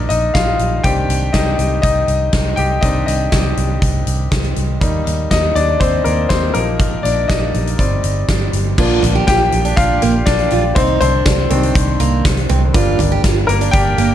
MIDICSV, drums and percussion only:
0, 0, Header, 1, 2, 480
1, 0, Start_track
1, 0, Key_signature, -3, "minor"
1, 0, Tempo, 495868
1, 816, Time_signature, 4, 2, 24, 8
1, 13694, End_track
2, 0, Start_track
2, 0, Title_t, "Drums"
2, 96, Note_on_c, 9, 42, 67
2, 193, Note_off_c, 9, 42, 0
2, 336, Note_on_c, 9, 42, 80
2, 338, Note_on_c, 9, 36, 84
2, 340, Note_on_c, 9, 38, 97
2, 433, Note_off_c, 9, 42, 0
2, 435, Note_off_c, 9, 36, 0
2, 437, Note_off_c, 9, 38, 0
2, 573, Note_on_c, 9, 42, 58
2, 670, Note_off_c, 9, 42, 0
2, 816, Note_on_c, 9, 36, 94
2, 816, Note_on_c, 9, 42, 82
2, 912, Note_off_c, 9, 42, 0
2, 913, Note_off_c, 9, 36, 0
2, 1062, Note_on_c, 9, 42, 70
2, 1159, Note_off_c, 9, 42, 0
2, 1295, Note_on_c, 9, 42, 75
2, 1296, Note_on_c, 9, 38, 94
2, 1298, Note_on_c, 9, 36, 82
2, 1392, Note_off_c, 9, 42, 0
2, 1393, Note_off_c, 9, 38, 0
2, 1394, Note_off_c, 9, 36, 0
2, 1536, Note_on_c, 9, 42, 55
2, 1633, Note_off_c, 9, 42, 0
2, 1776, Note_on_c, 9, 36, 93
2, 1782, Note_on_c, 9, 42, 82
2, 1873, Note_off_c, 9, 36, 0
2, 1878, Note_off_c, 9, 42, 0
2, 2013, Note_on_c, 9, 42, 62
2, 2110, Note_off_c, 9, 42, 0
2, 2251, Note_on_c, 9, 42, 82
2, 2256, Note_on_c, 9, 36, 89
2, 2256, Note_on_c, 9, 38, 96
2, 2348, Note_off_c, 9, 42, 0
2, 2353, Note_off_c, 9, 36, 0
2, 2353, Note_off_c, 9, 38, 0
2, 2489, Note_on_c, 9, 42, 62
2, 2585, Note_off_c, 9, 42, 0
2, 2735, Note_on_c, 9, 36, 95
2, 2736, Note_on_c, 9, 42, 77
2, 2832, Note_off_c, 9, 36, 0
2, 2833, Note_off_c, 9, 42, 0
2, 2980, Note_on_c, 9, 42, 76
2, 3077, Note_off_c, 9, 42, 0
2, 3214, Note_on_c, 9, 42, 84
2, 3215, Note_on_c, 9, 38, 91
2, 3218, Note_on_c, 9, 36, 83
2, 3311, Note_off_c, 9, 42, 0
2, 3312, Note_off_c, 9, 38, 0
2, 3315, Note_off_c, 9, 36, 0
2, 3459, Note_on_c, 9, 42, 53
2, 3556, Note_off_c, 9, 42, 0
2, 3698, Note_on_c, 9, 36, 94
2, 3704, Note_on_c, 9, 42, 84
2, 3795, Note_off_c, 9, 36, 0
2, 3801, Note_off_c, 9, 42, 0
2, 3938, Note_on_c, 9, 42, 66
2, 4035, Note_off_c, 9, 42, 0
2, 4177, Note_on_c, 9, 42, 80
2, 4180, Note_on_c, 9, 36, 94
2, 4181, Note_on_c, 9, 38, 99
2, 4273, Note_off_c, 9, 42, 0
2, 4276, Note_off_c, 9, 36, 0
2, 4278, Note_off_c, 9, 38, 0
2, 4300, Note_on_c, 9, 42, 43
2, 4396, Note_off_c, 9, 42, 0
2, 4416, Note_on_c, 9, 42, 61
2, 4513, Note_off_c, 9, 42, 0
2, 4660, Note_on_c, 9, 36, 96
2, 4662, Note_on_c, 9, 42, 81
2, 4757, Note_off_c, 9, 36, 0
2, 4759, Note_off_c, 9, 42, 0
2, 4906, Note_on_c, 9, 42, 74
2, 5003, Note_off_c, 9, 42, 0
2, 5141, Note_on_c, 9, 42, 78
2, 5142, Note_on_c, 9, 36, 81
2, 5142, Note_on_c, 9, 38, 94
2, 5238, Note_off_c, 9, 38, 0
2, 5238, Note_off_c, 9, 42, 0
2, 5239, Note_off_c, 9, 36, 0
2, 5382, Note_on_c, 9, 42, 56
2, 5479, Note_off_c, 9, 42, 0
2, 5621, Note_on_c, 9, 36, 95
2, 5626, Note_on_c, 9, 42, 79
2, 5718, Note_off_c, 9, 36, 0
2, 5723, Note_off_c, 9, 42, 0
2, 5859, Note_on_c, 9, 42, 64
2, 5956, Note_off_c, 9, 42, 0
2, 6097, Note_on_c, 9, 42, 81
2, 6101, Note_on_c, 9, 36, 89
2, 6101, Note_on_c, 9, 38, 99
2, 6194, Note_off_c, 9, 42, 0
2, 6198, Note_off_c, 9, 36, 0
2, 6198, Note_off_c, 9, 38, 0
2, 6334, Note_on_c, 9, 42, 67
2, 6431, Note_off_c, 9, 42, 0
2, 6577, Note_on_c, 9, 42, 75
2, 6579, Note_on_c, 9, 36, 100
2, 6674, Note_off_c, 9, 42, 0
2, 6676, Note_off_c, 9, 36, 0
2, 6826, Note_on_c, 9, 42, 78
2, 6922, Note_off_c, 9, 42, 0
2, 7062, Note_on_c, 9, 36, 85
2, 7062, Note_on_c, 9, 42, 84
2, 7063, Note_on_c, 9, 38, 86
2, 7158, Note_off_c, 9, 42, 0
2, 7159, Note_off_c, 9, 36, 0
2, 7159, Note_off_c, 9, 38, 0
2, 7302, Note_on_c, 9, 42, 53
2, 7399, Note_off_c, 9, 42, 0
2, 7426, Note_on_c, 9, 42, 45
2, 7523, Note_off_c, 9, 42, 0
2, 7541, Note_on_c, 9, 36, 86
2, 7547, Note_on_c, 9, 42, 76
2, 7637, Note_off_c, 9, 36, 0
2, 7644, Note_off_c, 9, 42, 0
2, 7778, Note_on_c, 9, 42, 70
2, 7875, Note_off_c, 9, 42, 0
2, 8018, Note_on_c, 9, 42, 79
2, 8021, Note_on_c, 9, 36, 81
2, 8022, Note_on_c, 9, 38, 103
2, 8115, Note_off_c, 9, 42, 0
2, 8118, Note_off_c, 9, 36, 0
2, 8119, Note_off_c, 9, 38, 0
2, 8258, Note_on_c, 9, 42, 66
2, 8355, Note_off_c, 9, 42, 0
2, 8500, Note_on_c, 9, 36, 102
2, 8501, Note_on_c, 9, 49, 96
2, 8597, Note_off_c, 9, 36, 0
2, 8597, Note_off_c, 9, 49, 0
2, 8738, Note_on_c, 9, 43, 61
2, 8746, Note_on_c, 9, 42, 89
2, 8835, Note_off_c, 9, 43, 0
2, 8843, Note_off_c, 9, 42, 0
2, 8979, Note_on_c, 9, 42, 85
2, 8980, Note_on_c, 9, 38, 107
2, 8981, Note_on_c, 9, 36, 101
2, 9075, Note_off_c, 9, 42, 0
2, 9076, Note_off_c, 9, 38, 0
2, 9078, Note_off_c, 9, 36, 0
2, 9218, Note_on_c, 9, 42, 63
2, 9314, Note_off_c, 9, 42, 0
2, 9340, Note_on_c, 9, 42, 50
2, 9437, Note_off_c, 9, 42, 0
2, 9460, Note_on_c, 9, 36, 106
2, 9466, Note_on_c, 9, 42, 86
2, 9557, Note_off_c, 9, 36, 0
2, 9563, Note_off_c, 9, 42, 0
2, 9697, Note_on_c, 9, 42, 72
2, 9794, Note_off_c, 9, 42, 0
2, 9934, Note_on_c, 9, 42, 95
2, 9939, Note_on_c, 9, 38, 108
2, 9940, Note_on_c, 9, 36, 108
2, 10031, Note_off_c, 9, 42, 0
2, 10035, Note_off_c, 9, 38, 0
2, 10036, Note_off_c, 9, 36, 0
2, 10054, Note_on_c, 9, 42, 50
2, 10150, Note_off_c, 9, 42, 0
2, 10168, Note_on_c, 9, 42, 73
2, 10265, Note_off_c, 9, 42, 0
2, 10414, Note_on_c, 9, 42, 91
2, 10417, Note_on_c, 9, 36, 114
2, 10511, Note_off_c, 9, 42, 0
2, 10514, Note_off_c, 9, 36, 0
2, 10654, Note_on_c, 9, 43, 62
2, 10663, Note_on_c, 9, 42, 90
2, 10751, Note_off_c, 9, 43, 0
2, 10759, Note_off_c, 9, 42, 0
2, 10895, Note_on_c, 9, 42, 91
2, 10896, Note_on_c, 9, 38, 115
2, 10899, Note_on_c, 9, 36, 100
2, 10992, Note_off_c, 9, 42, 0
2, 10993, Note_off_c, 9, 38, 0
2, 10996, Note_off_c, 9, 36, 0
2, 11135, Note_on_c, 9, 42, 61
2, 11232, Note_off_c, 9, 42, 0
2, 11259, Note_on_c, 9, 42, 54
2, 11356, Note_off_c, 9, 42, 0
2, 11378, Note_on_c, 9, 36, 107
2, 11383, Note_on_c, 9, 42, 94
2, 11475, Note_off_c, 9, 36, 0
2, 11480, Note_off_c, 9, 42, 0
2, 11614, Note_on_c, 9, 42, 75
2, 11711, Note_off_c, 9, 42, 0
2, 11855, Note_on_c, 9, 42, 93
2, 11858, Note_on_c, 9, 36, 108
2, 11860, Note_on_c, 9, 38, 112
2, 11952, Note_off_c, 9, 42, 0
2, 11955, Note_off_c, 9, 36, 0
2, 11957, Note_off_c, 9, 38, 0
2, 11974, Note_on_c, 9, 42, 47
2, 12071, Note_off_c, 9, 42, 0
2, 12093, Note_on_c, 9, 42, 72
2, 12097, Note_on_c, 9, 43, 69
2, 12190, Note_off_c, 9, 42, 0
2, 12193, Note_off_c, 9, 43, 0
2, 12337, Note_on_c, 9, 36, 120
2, 12337, Note_on_c, 9, 42, 92
2, 12433, Note_off_c, 9, 36, 0
2, 12433, Note_off_c, 9, 42, 0
2, 12573, Note_on_c, 9, 43, 66
2, 12582, Note_on_c, 9, 42, 88
2, 12670, Note_off_c, 9, 43, 0
2, 12678, Note_off_c, 9, 42, 0
2, 12816, Note_on_c, 9, 42, 89
2, 12817, Note_on_c, 9, 38, 98
2, 12818, Note_on_c, 9, 36, 100
2, 12912, Note_off_c, 9, 42, 0
2, 12913, Note_off_c, 9, 38, 0
2, 12914, Note_off_c, 9, 36, 0
2, 13057, Note_on_c, 9, 42, 65
2, 13154, Note_off_c, 9, 42, 0
2, 13179, Note_on_c, 9, 42, 53
2, 13275, Note_off_c, 9, 42, 0
2, 13296, Note_on_c, 9, 36, 111
2, 13300, Note_on_c, 9, 42, 94
2, 13393, Note_off_c, 9, 36, 0
2, 13397, Note_off_c, 9, 42, 0
2, 13535, Note_on_c, 9, 42, 80
2, 13631, Note_off_c, 9, 42, 0
2, 13694, End_track
0, 0, End_of_file